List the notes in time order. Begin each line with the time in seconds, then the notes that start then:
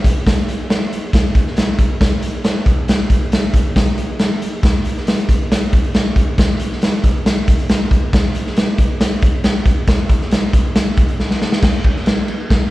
0.04 kick, closed hi-hat
0.27 kick, snare, closed hi-hat
0.49 closed hi-hat
0.70 snare, closed hi-hat
0.93 closed hi-hat
1.13 kick, snare, closed hi-hat
1.35 kick, closed hi-hat
1.47 snare
1.57 snare, closed hi-hat
1.79 kick, closed hi-hat
2.01 kick, snare, closed hi-hat
2.22 closed hi-hat
2.44 snare, closed hi-hat
2.66 kick, closed hi-hat
2.88 snare, closed hi-hat
3.10 kick, closed hi-hat
3.32 snare, closed hi-hat
3.54 kick, closed hi-hat
3.76 kick, snare, closed hi-hat
3.86 closed hi-hat
3.98 closed hi-hat
4.19 snare, closed hi-hat
4.42 closed hi-hat
4.63 kick, snare, closed hi-hat
4.85 closed hi-hat
4.97 snare
5.07 snare, closed hi-hat
5.17 closed hi-hat
5.29 kick, closed hi-hat
5.52 snare, closed hi-hat
5.73 kick, closed hi-hat
5.84 closed hi-hat
5.94 snare, closed hi-hat
6.16 kick, closed hi-hat
6.38 kick, snare, closed hi-hat
6.59 closed hi-hat
6.72 snare
6.82 snare, closed hi-hat
6.92 closed hi-hat
7.04 kick, closed hi-hat
7.26 snare, closed hi-hat
7.48 kick, closed hi-hat
7.59 closed hi-hat
7.69 snare, closed hi-hat
7.91 kick, closed hi-hat
8.13 kick, snare, closed hi-hat
8.35 closed hi-hat
8.47 snare
8.56 snare, closed hi-hat
8.78 kick, closed hi-hat
9.01 snare, closed hi-hat
9.22 kick, closed hi-hat
9.44 snare, closed hi-hat
9.66 kick, closed hi-hat
9.87 kick, snare, closed hi-hat
10.09 kick, closed hi-hat
10.21 snare
10.31 snare, closed hi-hat
10.53 kick, closed hi-hat
10.76 snare, closed hi-hat
10.97 kick, closed hi-hat
11.08 closed hi-hat
11.20 snare
11.31 snare
11.42 snare
11.52 snare
11.62 kick, snare, crash
11.84 kick, ride
11.96 snare
12.06 snare, ride
12.28 ride
12.50 kick, snare, ride